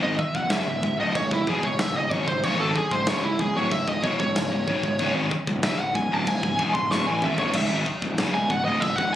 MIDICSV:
0, 0, Header, 1, 7, 480
1, 0, Start_track
1, 0, Key_signature, 4, "minor"
1, 0, Tempo, 639659
1, 1829, Time_signature, 4, 2, 24, 8
1, 6870, End_track
2, 0, Start_track
2, 0, Title_t, "Lead electric guitar"
2, 0, Program_c, 0, 29
2, 23, Note_on_c, 0, 75, 79
2, 141, Note_off_c, 0, 75, 0
2, 143, Note_on_c, 0, 76, 106
2, 275, Note_off_c, 0, 76, 0
2, 275, Note_on_c, 0, 78, 112
2, 379, Note_on_c, 0, 76, 97
2, 388, Note_off_c, 0, 78, 0
2, 718, Note_off_c, 0, 76, 0
2, 750, Note_on_c, 0, 75, 92
2, 866, Note_off_c, 0, 75, 0
2, 870, Note_on_c, 0, 73, 100
2, 985, Note_off_c, 0, 73, 0
2, 998, Note_on_c, 0, 64, 62
2, 1110, Note_off_c, 0, 64, 0
2, 1118, Note_on_c, 0, 68, 99
2, 1230, Note_off_c, 0, 68, 0
2, 1235, Note_on_c, 0, 73, 81
2, 1353, Note_off_c, 0, 73, 0
2, 1353, Note_on_c, 0, 76, 104
2, 1467, Note_off_c, 0, 76, 0
2, 1475, Note_on_c, 0, 75, 87
2, 1590, Note_off_c, 0, 75, 0
2, 1590, Note_on_c, 0, 73, 95
2, 1706, Note_off_c, 0, 73, 0
2, 1710, Note_on_c, 0, 72, 79
2, 1828, Note_off_c, 0, 72, 0
2, 1828, Note_on_c, 0, 73, 101
2, 1945, Note_off_c, 0, 73, 0
2, 1950, Note_on_c, 0, 69, 87
2, 2066, Note_off_c, 0, 69, 0
2, 2081, Note_on_c, 0, 68, 95
2, 2187, Note_on_c, 0, 72, 90
2, 2192, Note_off_c, 0, 68, 0
2, 2304, Note_off_c, 0, 72, 0
2, 2315, Note_on_c, 0, 73, 100
2, 2429, Note_off_c, 0, 73, 0
2, 2429, Note_on_c, 0, 64, 68
2, 2545, Note_off_c, 0, 64, 0
2, 2550, Note_on_c, 0, 68, 80
2, 2666, Note_off_c, 0, 68, 0
2, 2675, Note_on_c, 0, 73, 99
2, 2788, Note_off_c, 0, 73, 0
2, 2792, Note_on_c, 0, 76, 109
2, 2911, Note_off_c, 0, 76, 0
2, 2911, Note_on_c, 0, 75, 93
2, 3027, Note_off_c, 0, 75, 0
2, 3027, Note_on_c, 0, 73, 87
2, 3144, Note_off_c, 0, 73, 0
2, 3155, Note_on_c, 0, 73, 91
2, 3842, Note_off_c, 0, 73, 0
2, 4234, Note_on_c, 0, 76, 82
2, 4355, Note_off_c, 0, 76, 0
2, 4355, Note_on_c, 0, 78, 86
2, 4466, Note_on_c, 0, 80, 97
2, 4468, Note_off_c, 0, 78, 0
2, 4602, Note_off_c, 0, 80, 0
2, 4602, Note_on_c, 0, 81, 107
2, 4712, Note_off_c, 0, 81, 0
2, 4715, Note_on_c, 0, 80, 94
2, 5047, Note_off_c, 0, 80, 0
2, 5057, Note_on_c, 0, 84, 85
2, 5184, Note_off_c, 0, 84, 0
2, 5184, Note_on_c, 0, 85, 97
2, 5302, Note_off_c, 0, 85, 0
2, 5302, Note_on_c, 0, 80, 89
2, 5421, Note_off_c, 0, 80, 0
2, 5431, Note_on_c, 0, 76, 79
2, 5543, Note_off_c, 0, 76, 0
2, 5546, Note_on_c, 0, 73, 62
2, 5663, Note_off_c, 0, 73, 0
2, 5675, Note_on_c, 0, 76, 89
2, 5817, Note_off_c, 0, 76, 0
2, 6260, Note_on_c, 0, 80, 102
2, 6380, Note_off_c, 0, 80, 0
2, 6382, Note_on_c, 0, 78, 98
2, 6487, Note_off_c, 0, 78, 0
2, 6490, Note_on_c, 0, 75, 82
2, 6605, Note_off_c, 0, 75, 0
2, 6605, Note_on_c, 0, 76, 97
2, 6723, Note_off_c, 0, 76, 0
2, 6723, Note_on_c, 0, 78, 100
2, 6851, Note_off_c, 0, 78, 0
2, 6870, End_track
3, 0, Start_track
3, 0, Title_t, "Distorted electric guitar"
3, 0, Program_c, 1, 30
3, 25, Note_on_c, 1, 44, 96
3, 33, Note_on_c, 1, 51, 117
3, 139, Note_off_c, 1, 44, 0
3, 143, Note_off_c, 1, 51, 0
3, 268, Note_on_c, 1, 37, 67
3, 271, Note_on_c, 1, 44, 81
3, 380, Note_off_c, 1, 37, 0
3, 383, Note_on_c, 1, 42, 89
3, 387, Note_off_c, 1, 44, 0
3, 390, Note_on_c, 1, 49, 119
3, 498, Note_off_c, 1, 42, 0
3, 501, Note_off_c, 1, 49, 0
3, 501, Note_on_c, 1, 37, 70
3, 507, Note_on_c, 1, 44, 76
3, 610, Note_off_c, 1, 44, 0
3, 613, Note_off_c, 1, 37, 0
3, 619, Note_on_c, 1, 44, 76
3, 622, Note_on_c, 1, 37, 64
3, 730, Note_off_c, 1, 37, 0
3, 733, Note_on_c, 1, 38, 92
3, 741, Note_off_c, 1, 44, 0
3, 744, Note_on_c, 1, 45, 105
3, 853, Note_off_c, 1, 38, 0
3, 858, Note_on_c, 1, 37, 66
3, 859, Note_off_c, 1, 45, 0
3, 863, Note_on_c, 1, 44, 87
3, 977, Note_off_c, 1, 37, 0
3, 980, Note_off_c, 1, 44, 0
3, 986, Note_on_c, 1, 37, 78
3, 989, Note_on_c, 1, 44, 82
3, 1098, Note_off_c, 1, 37, 0
3, 1100, Note_off_c, 1, 44, 0
3, 1101, Note_on_c, 1, 40, 94
3, 1103, Note_on_c, 1, 47, 97
3, 1217, Note_off_c, 1, 40, 0
3, 1218, Note_off_c, 1, 47, 0
3, 1225, Note_on_c, 1, 37, 63
3, 1228, Note_on_c, 1, 44, 76
3, 1345, Note_off_c, 1, 37, 0
3, 1345, Note_off_c, 1, 44, 0
3, 1354, Note_on_c, 1, 37, 70
3, 1354, Note_on_c, 1, 44, 90
3, 1450, Note_off_c, 1, 37, 0
3, 1456, Note_off_c, 1, 44, 0
3, 1459, Note_on_c, 1, 37, 71
3, 1465, Note_on_c, 1, 44, 82
3, 1580, Note_off_c, 1, 44, 0
3, 1584, Note_off_c, 1, 37, 0
3, 1589, Note_on_c, 1, 44, 85
3, 1596, Note_on_c, 1, 51, 105
3, 1698, Note_off_c, 1, 44, 0
3, 1702, Note_on_c, 1, 37, 70
3, 1704, Note_off_c, 1, 51, 0
3, 1707, Note_on_c, 1, 44, 84
3, 1813, Note_off_c, 1, 37, 0
3, 1819, Note_off_c, 1, 44, 0
3, 1822, Note_on_c, 1, 37, 98
3, 1828, Note_on_c, 1, 44, 114
3, 1933, Note_off_c, 1, 44, 0
3, 1938, Note_off_c, 1, 37, 0
3, 1942, Note_on_c, 1, 44, 95
3, 1951, Note_on_c, 1, 51, 116
3, 2058, Note_off_c, 1, 44, 0
3, 2063, Note_off_c, 1, 51, 0
3, 2193, Note_on_c, 1, 37, 82
3, 2193, Note_on_c, 1, 44, 85
3, 2311, Note_off_c, 1, 37, 0
3, 2311, Note_off_c, 1, 44, 0
3, 2316, Note_on_c, 1, 42, 89
3, 2324, Note_on_c, 1, 49, 101
3, 2425, Note_off_c, 1, 42, 0
3, 2429, Note_off_c, 1, 49, 0
3, 2439, Note_on_c, 1, 37, 76
3, 2441, Note_on_c, 1, 44, 76
3, 2542, Note_off_c, 1, 37, 0
3, 2545, Note_off_c, 1, 44, 0
3, 2551, Note_on_c, 1, 37, 64
3, 2554, Note_on_c, 1, 44, 70
3, 2662, Note_off_c, 1, 37, 0
3, 2665, Note_on_c, 1, 38, 85
3, 2669, Note_off_c, 1, 44, 0
3, 2672, Note_on_c, 1, 45, 113
3, 2780, Note_off_c, 1, 38, 0
3, 2783, Note_off_c, 1, 45, 0
3, 2792, Note_on_c, 1, 37, 72
3, 2796, Note_on_c, 1, 44, 80
3, 2909, Note_off_c, 1, 37, 0
3, 2910, Note_off_c, 1, 44, 0
3, 2918, Note_on_c, 1, 37, 69
3, 2919, Note_on_c, 1, 44, 84
3, 3022, Note_off_c, 1, 37, 0
3, 3025, Note_on_c, 1, 40, 91
3, 3028, Note_off_c, 1, 44, 0
3, 3031, Note_on_c, 1, 47, 95
3, 3140, Note_off_c, 1, 40, 0
3, 3143, Note_off_c, 1, 47, 0
3, 3160, Note_on_c, 1, 37, 73
3, 3164, Note_on_c, 1, 44, 79
3, 3265, Note_off_c, 1, 37, 0
3, 3269, Note_off_c, 1, 44, 0
3, 3274, Note_on_c, 1, 37, 74
3, 3278, Note_on_c, 1, 44, 78
3, 3380, Note_off_c, 1, 37, 0
3, 3385, Note_off_c, 1, 44, 0
3, 3389, Note_on_c, 1, 37, 75
3, 3394, Note_on_c, 1, 44, 87
3, 3504, Note_off_c, 1, 44, 0
3, 3509, Note_off_c, 1, 37, 0
3, 3513, Note_on_c, 1, 44, 96
3, 3515, Note_on_c, 1, 51, 92
3, 3624, Note_off_c, 1, 44, 0
3, 3625, Note_off_c, 1, 51, 0
3, 3638, Note_on_c, 1, 37, 70
3, 3642, Note_on_c, 1, 44, 71
3, 3744, Note_off_c, 1, 37, 0
3, 3750, Note_off_c, 1, 44, 0
3, 3753, Note_on_c, 1, 37, 104
3, 3759, Note_on_c, 1, 44, 99
3, 3859, Note_off_c, 1, 44, 0
3, 3864, Note_off_c, 1, 37, 0
3, 3868, Note_on_c, 1, 44, 108
3, 3873, Note_on_c, 1, 51, 114
3, 3981, Note_off_c, 1, 44, 0
3, 3984, Note_off_c, 1, 51, 0
3, 4102, Note_on_c, 1, 37, 70
3, 4103, Note_on_c, 1, 44, 84
3, 4216, Note_off_c, 1, 37, 0
3, 4219, Note_on_c, 1, 42, 98
3, 4226, Note_off_c, 1, 44, 0
3, 4230, Note_on_c, 1, 49, 105
3, 4337, Note_off_c, 1, 42, 0
3, 4342, Note_off_c, 1, 49, 0
3, 4348, Note_on_c, 1, 37, 72
3, 4351, Note_on_c, 1, 44, 74
3, 4454, Note_off_c, 1, 37, 0
3, 4457, Note_off_c, 1, 44, 0
3, 4463, Note_on_c, 1, 37, 63
3, 4466, Note_on_c, 1, 44, 74
3, 4583, Note_off_c, 1, 37, 0
3, 4586, Note_on_c, 1, 38, 92
3, 4587, Note_off_c, 1, 44, 0
3, 4594, Note_on_c, 1, 45, 112
3, 4699, Note_off_c, 1, 38, 0
3, 4702, Note_off_c, 1, 45, 0
3, 4702, Note_on_c, 1, 37, 64
3, 4705, Note_on_c, 1, 44, 75
3, 4814, Note_off_c, 1, 37, 0
3, 4819, Note_off_c, 1, 44, 0
3, 4823, Note_on_c, 1, 37, 66
3, 4828, Note_on_c, 1, 44, 82
3, 4934, Note_off_c, 1, 37, 0
3, 4937, Note_on_c, 1, 40, 85
3, 4943, Note_off_c, 1, 44, 0
3, 4946, Note_on_c, 1, 47, 99
3, 5056, Note_off_c, 1, 40, 0
3, 5060, Note_off_c, 1, 47, 0
3, 5060, Note_on_c, 1, 37, 65
3, 5068, Note_on_c, 1, 44, 81
3, 5184, Note_off_c, 1, 37, 0
3, 5188, Note_off_c, 1, 44, 0
3, 5188, Note_on_c, 1, 38, 101
3, 5192, Note_on_c, 1, 45, 101
3, 5298, Note_off_c, 1, 45, 0
3, 5301, Note_off_c, 1, 38, 0
3, 5307, Note_on_c, 1, 45, 101
3, 5316, Note_on_c, 1, 52, 101
3, 5420, Note_off_c, 1, 45, 0
3, 5425, Note_off_c, 1, 52, 0
3, 5430, Note_on_c, 1, 44, 89
3, 5436, Note_on_c, 1, 51, 92
3, 5542, Note_off_c, 1, 44, 0
3, 5545, Note_off_c, 1, 51, 0
3, 5557, Note_on_c, 1, 43, 91
3, 5563, Note_on_c, 1, 50, 98
3, 5665, Note_off_c, 1, 43, 0
3, 5668, Note_off_c, 1, 50, 0
3, 5672, Note_on_c, 1, 37, 96
3, 5679, Note_on_c, 1, 44, 112
3, 5783, Note_off_c, 1, 37, 0
3, 5783, Note_off_c, 1, 44, 0
3, 5792, Note_on_c, 1, 44, 94
3, 5800, Note_on_c, 1, 51, 108
3, 5903, Note_off_c, 1, 44, 0
3, 5907, Note_off_c, 1, 51, 0
3, 6035, Note_on_c, 1, 37, 62
3, 6036, Note_on_c, 1, 44, 73
3, 6151, Note_off_c, 1, 37, 0
3, 6152, Note_off_c, 1, 44, 0
3, 6156, Note_on_c, 1, 42, 96
3, 6161, Note_on_c, 1, 49, 102
3, 6265, Note_off_c, 1, 42, 0
3, 6267, Note_off_c, 1, 49, 0
3, 6284, Note_on_c, 1, 37, 64
3, 6286, Note_on_c, 1, 44, 75
3, 6381, Note_off_c, 1, 37, 0
3, 6389, Note_off_c, 1, 44, 0
3, 6390, Note_on_c, 1, 37, 63
3, 6398, Note_on_c, 1, 44, 69
3, 6498, Note_off_c, 1, 37, 0
3, 6501, Note_on_c, 1, 38, 95
3, 6505, Note_off_c, 1, 44, 0
3, 6508, Note_on_c, 1, 45, 101
3, 6617, Note_off_c, 1, 38, 0
3, 6620, Note_off_c, 1, 45, 0
3, 6629, Note_on_c, 1, 37, 70
3, 6629, Note_on_c, 1, 44, 77
3, 6738, Note_off_c, 1, 37, 0
3, 6741, Note_off_c, 1, 44, 0
3, 6747, Note_on_c, 1, 37, 71
3, 6750, Note_on_c, 1, 44, 73
3, 6867, Note_off_c, 1, 37, 0
3, 6868, Note_off_c, 1, 44, 0
3, 6870, End_track
4, 0, Start_track
4, 0, Title_t, "Picked electric bass"
4, 0, Program_c, 2, 34
4, 11, Note_on_c, 2, 32, 98
4, 130, Note_off_c, 2, 32, 0
4, 258, Note_on_c, 2, 25, 77
4, 367, Note_off_c, 2, 25, 0
4, 372, Note_on_c, 2, 30, 82
4, 486, Note_off_c, 2, 30, 0
4, 490, Note_on_c, 2, 25, 79
4, 610, Note_off_c, 2, 25, 0
4, 621, Note_on_c, 2, 25, 87
4, 729, Note_off_c, 2, 25, 0
4, 733, Note_on_c, 2, 26, 104
4, 852, Note_off_c, 2, 26, 0
4, 864, Note_on_c, 2, 25, 92
4, 977, Note_off_c, 2, 25, 0
4, 984, Note_on_c, 2, 25, 89
4, 1097, Note_off_c, 2, 25, 0
4, 1104, Note_on_c, 2, 28, 104
4, 1217, Note_off_c, 2, 28, 0
4, 1224, Note_on_c, 2, 25, 75
4, 1317, Note_off_c, 2, 25, 0
4, 1321, Note_on_c, 2, 25, 96
4, 1438, Note_off_c, 2, 25, 0
4, 1442, Note_on_c, 2, 25, 88
4, 1566, Note_off_c, 2, 25, 0
4, 1584, Note_on_c, 2, 32, 98
4, 1698, Note_off_c, 2, 32, 0
4, 1707, Note_on_c, 2, 25, 88
4, 1817, Note_off_c, 2, 25, 0
4, 1822, Note_on_c, 2, 25, 106
4, 1928, Note_off_c, 2, 25, 0
4, 1933, Note_on_c, 2, 32, 89
4, 2052, Note_off_c, 2, 32, 0
4, 2184, Note_on_c, 2, 25, 81
4, 2286, Note_off_c, 2, 25, 0
4, 2291, Note_on_c, 2, 30, 85
4, 2396, Note_off_c, 2, 30, 0
4, 2400, Note_on_c, 2, 25, 92
4, 2525, Note_off_c, 2, 25, 0
4, 2541, Note_on_c, 2, 25, 84
4, 2638, Note_off_c, 2, 25, 0
4, 2642, Note_on_c, 2, 26, 97
4, 2766, Note_off_c, 2, 26, 0
4, 2785, Note_on_c, 2, 25, 92
4, 2898, Note_off_c, 2, 25, 0
4, 2905, Note_on_c, 2, 25, 92
4, 3018, Note_off_c, 2, 25, 0
4, 3027, Note_on_c, 2, 28, 97
4, 3140, Note_off_c, 2, 28, 0
4, 3145, Note_on_c, 2, 25, 86
4, 3252, Note_off_c, 2, 25, 0
4, 3256, Note_on_c, 2, 25, 95
4, 3371, Note_off_c, 2, 25, 0
4, 3376, Note_on_c, 2, 25, 89
4, 3493, Note_off_c, 2, 25, 0
4, 3507, Note_on_c, 2, 32, 102
4, 3620, Note_off_c, 2, 32, 0
4, 3626, Note_on_c, 2, 25, 84
4, 3739, Note_off_c, 2, 25, 0
4, 3748, Note_on_c, 2, 25, 104
4, 3855, Note_off_c, 2, 25, 0
4, 3860, Note_on_c, 2, 32, 94
4, 3976, Note_off_c, 2, 32, 0
4, 4106, Note_on_c, 2, 25, 79
4, 4214, Note_off_c, 2, 25, 0
4, 4219, Note_on_c, 2, 30, 90
4, 4325, Note_off_c, 2, 30, 0
4, 4329, Note_on_c, 2, 25, 84
4, 4450, Note_off_c, 2, 25, 0
4, 4466, Note_on_c, 2, 25, 88
4, 4570, Note_off_c, 2, 25, 0
4, 4574, Note_on_c, 2, 26, 93
4, 4692, Note_off_c, 2, 26, 0
4, 4706, Note_on_c, 2, 25, 82
4, 4819, Note_off_c, 2, 25, 0
4, 4825, Note_on_c, 2, 25, 79
4, 4938, Note_off_c, 2, 25, 0
4, 4945, Note_on_c, 2, 28, 103
4, 5054, Note_off_c, 2, 28, 0
4, 5058, Note_on_c, 2, 25, 82
4, 5172, Note_off_c, 2, 25, 0
4, 5177, Note_on_c, 2, 26, 92
4, 5294, Note_off_c, 2, 26, 0
4, 5314, Note_on_c, 2, 33, 96
4, 5423, Note_off_c, 2, 33, 0
4, 5427, Note_on_c, 2, 32, 99
4, 5534, Note_off_c, 2, 32, 0
4, 5538, Note_on_c, 2, 31, 89
4, 5652, Note_off_c, 2, 31, 0
4, 5656, Note_on_c, 2, 25, 99
4, 5773, Note_off_c, 2, 25, 0
4, 5780, Note_on_c, 2, 32, 103
4, 5892, Note_off_c, 2, 32, 0
4, 6016, Note_on_c, 2, 25, 77
4, 6130, Note_off_c, 2, 25, 0
4, 6134, Note_on_c, 2, 30, 93
4, 6240, Note_off_c, 2, 30, 0
4, 6244, Note_on_c, 2, 25, 86
4, 6366, Note_off_c, 2, 25, 0
4, 6375, Note_on_c, 2, 25, 88
4, 6486, Note_off_c, 2, 25, 0
4, 6490, Note_on_c, 2, 26, 99
4, 6609, Note_off_c, 2, 26, 0
4, 6619, Note_on_c, 2, 25, 81
4, 6734, Note_off_c, 2, 25, 0
4, 6738, Note_on_c, 2, 25, 83
4, 6853, Note_off_c, 2, 25, 0
4, 6870, End_track
5, 0, Start_track
5, 0, Title_t, "Muted distorted electric guitar strokes"
5, 149, Note_on_c, 9, 29, 55
5, 224, Note_off_c, 9, 29, 0
5, 2072, Note_on_c, 9, 29, 58
5, 2147, Note_off_c, 9, 29, 0
5, 3985, Note_on_c, 9, 29, 55
5, 4060, Note_off_c, 9, 29, 0
5, 5919, Note_on_c, 9, 29, 55
5, 5994, Note_off_c, 9, 29, 0
5, 6870, End_track
6, 0, Start_track
6, 0, Title_t, "Muted picked electric bass strokes"
6, 140, Note_on_c, 9, 29, 41
6, 215, Note_off_c, 9, 29, 0
6, 2066, Note_on_c, 9, 29, 45
6, 2141, Note_off_c, 9, 29, 0
6, 3984, Note_on_c, 9, 29, 42
6, 4059, Note_off_c, 9, 29, 0
6, 5897, Note_on_c, 9, 29, 41
6, 5972, Note_off_c, 9, 29, 0
6, 6870, End_track
7, 0, Start_track
7, 0, Title_t, "Drums"
7, 141, Note_on_c, 9, 36, 96
7, 216, Note_off_c, 9, 36, 0
7, 261, Note_on_c, 9, 36, 95
7, 336, Note_off_c, 9, 36, 0
7, 373, Note_on_c, 9, 52, 60
7, 377, Note_on_c, 9, 38, 116
7, 448, Note_off_c, 9, 52, 0
7, 452, Note_off_c, 9, 38, 0
7, 624, Note_on_c, 9, 36, 107
7, 699, Note_off_c, 9, 36, 0
7, 865, Note_on_c, 9, 36, 107
7, 866, Note_on_c, 9, 52, 61
7, 940, Note_off_c, 9, 36, 0
7, 941, Note_off_c, 9, 52, 0
7, 986, Note_on_c, 9, 36, 97
7, 1061, Note_off_c, 9, 36, 0
7, 1105, Note_on_c, 9, 36, 89
7, 1180, Note_off_c, 9, 36, 0
7, 1225, Note_on_c, 9, 36, 84
7, 1300, Note_off_c, 9, 36, 0
7, 1341, Note_on_c, 9, 52, 68
7, 1345, Note_on_c, 9, 38, 118
7, 1416, Note_off_c, 9, 52, 0
7, 1420, Note_off_c, 9, 38, 0
7, 1586, Note_on_c, 9, 36, 99
7, 1661, Note_off_c, 9, 36, 0
7, 1708, Note_on_c, 9, 36, 93
7, 1783, Note_off_c, 9, 36, 0
7, 1828, Note_on_c, 9, 36, 92
7, 1830, Note_on_c, 9, 52, 67
7, 1903, Note_off_c, 9, 36, 0
7, 1905, Note_off_c, 9, 52, 0
7, 2068, Note_on_c, 9, 36, 82
7, 2143, Note_off_c, 9, 36, 0
7, 2187, Note_on_c, 9, 36, 96
7, 2262, Note_off_c, 9, 36, 0
7, 2300, Note_on_c, 9, 52, 64
7, 2303, Note_on_c, 9, 38, 119
7, 2375, Note_off_c, 9, 52, 0
7, 2378, Note_off_c, 9, 38, 0
7, 2546, Note_on_c, 9, 36, 99
7, 2621, Note_off_c, 9, 36, 0
7, 2787, Note_on_c, 9, 52, 65
7, 2788, Note_on_c, 9, 36, 100
7, 2862, Note_off_c, 9, 52, 0
7, 2863, Note_off_c, 9, 36, 0
7, 2908, Note_on_c, 9, 36, 90
7, 2983, Note_off_c, 9, 36, 0
7, 3029, Note_on_c, 9, 36, 84
7, 3104, Note_off_c, 9, 36, 0
7, 3150, Note_on_c, 9, 36, 84
7, 3225, Note_off_c, 9, 36, 0
7, 3269, Note_on_c, 9, 52, 72
7, 3272, Note_on_c, 9, 38, 119
7, 3344, Note_off_c, 9, 52, 0
7, 3348, Note_off_c, 9, 38, 0
7, 3509, Note_on_c, 9, 36, 93
7, 3584, Note_off_c, 9, 36, 0
7, 3628, Note_on_c, 9, 36, 90
7, 3703, Note_off_c, 9, 36, 0
7, 3743, Note_on_c, 9, 52, 67
7, 3747, Note_on_c, 9, 36, 92
7, 3818, Note_off_c, 9, 52, 0
7, 3822, Note_off_c, 9, 36, 0
7, 3987, Note_on_c, 9, 36, 91
7, 4063, Note_off_c, 9, 36, 0
7, 4108, Note_on_c, 9, 36, 87
7, 4183, Note_off_c, 9, 36, 0
7, 4222, Note_on_c, 9, 52, 68
7, 4226, Note_on_c, 9, 38, 123
7, 4297, Note_off_c, 9, 52, 0
7, 4301, Note_off_c, 9, 38, 0
7, 4467, Note_on_c, 9, 36, 105
7, 4542, Note_off_c, 9, 36, 0
7, 4706, Note_on_c, 9, 36, 112
7, 4707, Note_on_c, 9, 52, 62
7, 4781, Note_off_c, 9, 36, 0
7, 4782, Note_off_c, 9, 52, 0
7, 4827, Note_on_c, 9, 36, 87
7, 4902, Note_off_c, 9, 36, 0
7, 4946, Note_on_c, 9, 36, 94
7, 5021, Note_off_c, 9, 36, 0
7, 5064, Note_on_c, 9, 36, 74
7, 5139, Note_off_c, 9, 36, 0
7, 5187, Note_on_c, 9, 38, 73
7, 5262, Note_off_c, 9, 38, 0
7, 5418, Note_on_c, 9, 45, 100
7, 5493, Note_off_c, 9, 45, 0
7, 5538, Note_on_c, 9, 43, 99
7, 5613, Note_off_c, 9, 43, 0
7, 5653, Note_on_c, 9, 49, 105
7, 5653, Note_on_c, 9, 52, 64
7, 5660, Note_on_c, 9, 36, 113
7, 5728, Note_off_c, 9, 49, 0
7, 5728, Note_off_c, 9, 52, 0
7, 5735, Note_off_c, 9, 36, 0
7, 5900, Note_on_c, 9, 36, 84
7, 5975, Note_off_c, 9, 36, 0
7, 6020, Note_on_c, 9, 36, 91
7, 6095, Note_off_c, 9, 36, 0
7, 6137, Note_on_c, 9, 52, 67
7, 6141, Note_on_c, 9, 38, 108
7, 6212, Note_off_c, 9, 52, 0
7, 6216, Note_off_c, 9, 38, 0
7, 6379, Note_on_c, 9, 36, 96
7, 6454, Note_off_c, 9, 36, 0
7, 6618, Note_on_c, 9, 52, 66
7, 6619, Note_on_c, 9, 36, 110
7, 6693, Note_off_c, 9, 52, 0
7, 6694, Note_off_c, 9, 36, 0
7, 6741, Note_on_c, 9, 36, 84
7, 6816, Note_off_c, 9, 36, 0
7, 6870, End_track
0, 0, End_of_file